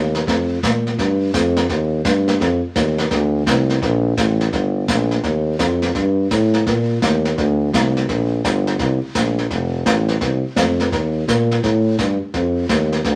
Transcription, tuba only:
Already playing: D#2
0.27 F2
0.63 A#2
0.98 G2
1.34 F2
1.70 D#2
2.05 G2
2.41 F2
2.76 D#2
3.11 D2
3.46 C2
3.82 A#1
4.18 A1
4.53 G1
4.88 A#1
5.24 D#2
5.59 F2
5.95 G2
6.31 A2
6.67 A#2
7.02 D#2
7.38 D2
7.73 C2
8.09 A#1
8.45 G1
8.80 C2
9.03 C2
9.15 A#1
9.50 F1
9.86 A1
10.21 C2
10.57 F2
10.92 D#2
11.28 A#2
11.63 A2
11.99 G2
12.22 G2
12.34 F2
12.70 D#2
13.05 D2

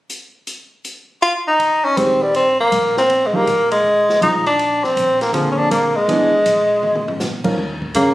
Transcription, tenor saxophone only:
1.22 F4
1.48 D#4
1.85 C#4
1.98 C4
2.22 G3
2.36 C4
2.61 A#3
2.98 C4
3.26 G#3
3.35 A#3
3.72 G#3
4.22 D#4
4.47 D4
4.84 C4
5.21 A#3
5.34 F3
5.52 C#4
5.58 D4
5.71 A#3
5.96 G#3
7.96 A#3

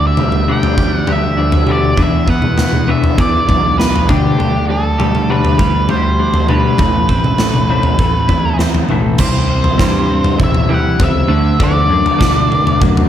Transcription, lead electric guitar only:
0.07 E5
0.52 G5
0.95 F#5
1.12 E5
1.72 D5
2.02 E5
2.30 F#5
2.91 E5
3.21 D5
3.78 B4
4.08 G4
4.70 A4
5.30 B4
5.91 C5
6.49 B4
9.21 C5
10.44 E5
10.74 F#5
11.04 E5
11.64 D5

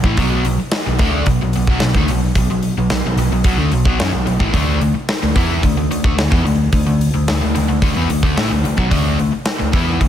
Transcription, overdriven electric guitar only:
0.05 A2 E3
0.18 B2 F#3 B3
0.46 B2 F#3
0.60 muted overdriven electric guitar stroke
0.87 B2 F#3
0.99 D3 A3 D4
1.28 B2 F#3
1.42 B2 F#3
1.56 B2 F#3
1.69 B2 F#3
1.83 B2 F#3
1.96 D3 A3
2.10 B2 F#3
2.38 B2 F#3
2.50 B2 F#3
2.78 B2 F#3
2.92 B2 F#3
3.06 B2 F#3
3.19 B2 F#3
3.32 B2 F#3
3.45 B2 F#3
3.58 D3 A3
3.73 B2 F#3
3.85 B2 F#3
4.00 F#3 C#4
4.13 B2 F#3
4.26 B2 F#3
4.40 A2 E3
4.54 D3 A3 D4
4.81 D3 A3
4.95 muted overdriven electric guitar stroke
5.23 D3 A3
5.35 E3 B3 E4
5.64 D3 A3
5.77 D3 A3
5.91 D3 A3
6.04 D3 A3
6.18 D3 A3
6.31 E3 B3
6.45 D3 A3
6.73 D3 A3
6.86 D3 A3
7.14 D3 A3
7.28 D3 A3
7.41 D3 A3
7.55 D3 A3
7.69 D3 A3
7.83 D3 A3
7.97 E3 B3
8.10 D3 A3
8.23 D3 A3
8.37 A3 E4
8.50 D3 A3
8.64 D3 A3
8.77 B2 F#3
8.90 D3 A3 D4
9.19 D3 A3
9.33 muted overdriven electric guitar stroke
9.60 D3 A3
9.73 E3 B3 E4
10.01 D3 A3

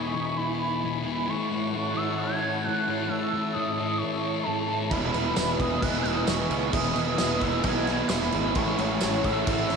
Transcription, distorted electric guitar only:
Already playing: E2 B2 E3
0.14 B2 E3
0.83 E2 B2 E3
1.03 B2 E3
1.28 A2 E3 A3
1.50 E3 A3
1.73 A2 E3 A3
1.95 E3 A3
2.64 A2 E3 A3
2.87 E3 A3
3.09 A2 E3 A3
3.33 E3 A3
3.55 A2 E3 A3
3.78 E3 A3
4.47 A2 E3 A3
4.68 E3 A3
4.92 E2 B2 E3
5.14 B2 E3
5.36 E2 B2 E3
5.60 B2 E3
6.27 E2 B2 E3
6.51 B2 E3
6.73 E2 B2 E3
6.97 B2 E3
7.18 E2 B2 E3
7.42 B2 E3
8.10 E2 B2 E3
8.33 B2 E3
8.56 A2 E3 A3
8.78 E3 A3
9.02 A2 E3 A3
9.26 E3 A3

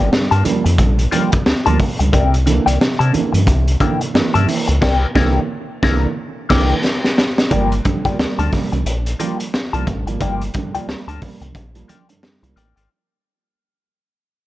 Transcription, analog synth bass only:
0.00 G1
0.12 G2
0.32 G2
0.66 F2
0.78 A#1
1.46 D2
1.67 D2
2.00 C#2
2.13 C2
2.67 C2
2.81 C3
3.00 C3
3.34 G2
3.47 C2
4.14 G2
4.35 G2
4.68 C#2
4.82 C2
5.15 C2
5.83 C2
6.50 C2
7.51 G1
8.05 D2
8.18 D2
8.39 D2
8.73 C2
8.86 A#1
9.73 C2
9.87 A1
10.06 G#1
10.21 G1
10.74 D2
10.88 D2
11.08 D2
11.41 C2
11.55 A#1
12.43 C2
12.56 A1
12.77 G#1

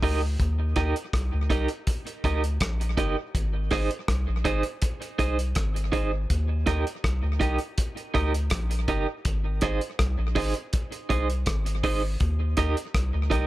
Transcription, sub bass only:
0.03 D2
0.40 D#2
0.77 D#2
1.14 C2
1.34 D2
1.50 C2
2.24 D2
2.61 A#1
2.98 G1
3.35 G#1
3.72 G#1
4.09 C2
4.28 A#1
4.46 G#1
5.20 C2
5.57 G#1
6.30 D#2
6.67 D#2
7.05 C2
7.23 D2
7.41 C2
8.15 D2
8.52 A#1
8.88 G1
9.26 G#1
9.63 G#1
10.00 C2
10.18 A#1
10.36 G#1
11.11 C2
11.47 G#1
12.21 D#2
12.58 D#2
12.95 C2
13.14 D2
13.32 C2

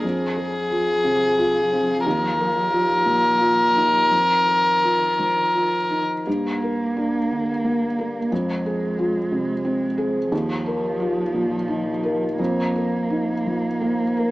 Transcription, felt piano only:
0.04 F2
0.37 G#4
0.71 F4
1.04 C3
1.38 F4
1.73 C4
2.06 D#2
2.39 A#4
2.73 F4
3.06 A#2
3.40 F4
3.75 D#4
4.11 F2
4.46 A#4
4.83 F4
5.19 F3
5.54 F4
5.90 D#4
6.27 G2
6.62 A#4
6.97 D4
7.31 D3
7.64 A#3
7.99 A#4
8.32 F2
8.66 G#4
8.99 F4
9.32 C3
9.65 C4
9.98 G#4
10.32 D#2
10.66 A#4
11.00 F4
11.34 A#2
11.68 D#4
12.03 A#4
12.39 F2
12.76 A#4
13.10 D#4
13.46 F3
13.81 A#3
14.17 A#4

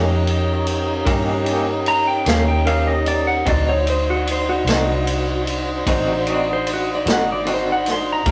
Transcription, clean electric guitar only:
Already playing: A#3 C#4 G4
1.05 D#3 A#3 C#4 G4
1.44 A#3 C#4 G4
2.25 A#3 C#4 G4
2.66 D#3 A#3 C#4 G4
3.45 D3 C4 D#4 F#4
4.67 C4 D#4 F#4
5.88 D3 C4 D#4 F#4
6.27 C4 D#4 F#4
7.06 C4 D#4 F#4
7.45 D3 C4 D#4 F#4
8.26 G2 F3

